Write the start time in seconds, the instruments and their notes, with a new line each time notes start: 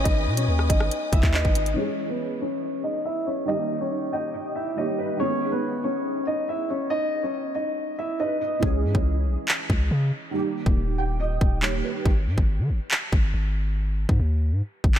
Already playing: felt piano D#3 G#3 B3 G#4, string section B4 D#5 G#5 D#6
0.04 808-style bass G#1, grand piano D#4 D#5, kick, closed hi-hat
0.27 808-style bass B2
0.37 grand piano C#4 C#5, closed hi-hat
0.48 808-style bass D#2
0.59 cross-stick
0.69 808-style bass G#1, grand piano D#4 D#5, kick, closed hi-hat
0.80 cross-stick
0.91 closed hi-hat
1.13 808-style bass G#1, grand piano E4 E5, kick, closed hi-hat
1.23 808-style bass D#2, kick, clap
1.34 grand piano D#4 D#5, felt piano B4, clap
1.45 808-style bass G#1, kick
1.55 felt piano D#5, closed hi-hat
1.66 closed hi-hat
1.74 felt piano E3 G#3, grand piano C#5
1.78 grand piano C#4, felt piano C#4 G#4
2.09 grand piano B3 B4
2.41 grand piano C#4 C#5
2.84 grand piano D#4 D#5
3.05 grand piano E4 E5
3.27 grand piano C#4 C#5
3.45 felt piano D#3 G3, grand piano D#4 D#5
3.49 felt piano A#3 G4
3.81 grand piano C#4 C#5
4.13 grand piano D#4 D#5, felt piano G5
4.34 felt piano D#5
4.56 grand piano E4 E5
4.75 felt piano D#3 G3 A#3 G4 C#5, grand piano D#4 D#5
4.98 felt piano B4
5.16 felt piano D#3 G#3, grand piano C#5
5.21 felt piano B3 G#4, grand piano C#4
5.52 grand piano B3 B4
5.84 grand piano C#4 C#5
6.27 grand piano D#4 D#5
6.49 grand piano E4 E5
6.70 grand piano C#4 C#5
6.90 grand piano D#4 D#5
7.23 grand piano C#4 C#5
7.55 grand piano D#4 D#5
7.99 grand piano E4 E5
8.20 grand piano D#4 D#5, felt piano B4
8.41 felt piano D#5
8.59 808-style bass C#2, felt piano E3 G#3, kick
8.64 felt piano C#4 G#4
8.84 808-style bass G#2
8.95 808-style bass C#2, kick
9.27 808-style bass B1
9.48 clap
9.70 808-style bass C#2, kick
9.91 808-style bass C#3
10.31 felt piano D#3 G3
10.35 felt piano A#3 G4
10.66 808-style bass D#1, kick
10.77 808-style bass D#1
10.98 felt piano G5
11.20 felt piano D#5
11.41 808-style bass D#1, kick
11.61 felt piano D#3 G3 A#3 G4 C#5, clap
11.84 felt piano B4
12.05 808-style bass G#1, kick
12.27 808-style bass G#2
12.38 808-style bass G#1, kick
12.59 808-style bass D#3
12.70 808-style bass G#1
12.91 clap
13.13 808-style bass G#1, kick
13.34 808-style bass G#1
14.09 808-style bass G#2, kick
14.20 808-style bass D#2
14.52 808-style bass G#2
14.84 808-style bass G#1, kick
14.95 clap